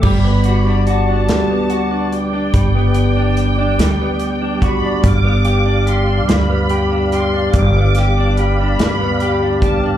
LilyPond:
<<
  \new Staff \with { instrumentName = "Violin section" } { \time 6/8 \key g \major \tempo 4. = 48 b''4 a''4. g''8~ | g''2~ g''8 b''8 | d'''4 c'''8 b''4 c'''8 | d'''4 b''4. a''8 | }
  \new Staff \with { instrumentName = "Tonewheel organ" } { \time 6/8 \key g \major << { r2. | r2. | f''2.~ | f''2. | } \\ { <g d''>2.~ | <g d''>2.~ | <g d''>2.~ | <g d''>2. | } >> }
  \new Staff \with { instrumentName = "Clean electric guitar" } { \time 6/8 \key g \major g16 b16 fis'16 d'16 fis'16 d'16 g16 b16 fis'16 d'8 d'16 | g16 b8 d'8 d'16 g16 b8 d'16 fis'16 d'16 | g,16 b16 g'16 d'16 g'16 d'16 g,16 b16 g'16 d'16 g'16 d'16 | g,16 b16 g'16 d'16 g'16 d'16 g,16 b16 g'16 d'16 g'16 d'16 | }
  \new Staff \with { instrumentName = "Upright bass" } { \clef bass \time 6/8 \key g \major g,,4. d,4. | g,,4. d,4. | g,,4. d,4. | g,,4. r4. | }
  \new DrumStaff \with { instrumentName = "Drums" } \drummode { \time 6/8 <cymc bd>8 hh8 hh8 <hh sn>8 hh8 hh8 | <hh bd>8 hh8 hh8 <hh sn>8 hh8 <hh bd>8 | <hh bd>8 hh8 hh8 <hh sn>8 hh8 hh8 | <hh bd>8 <hh sn>8 hh8 <hh sn>8 hh8 <hh bd>8 | }
>>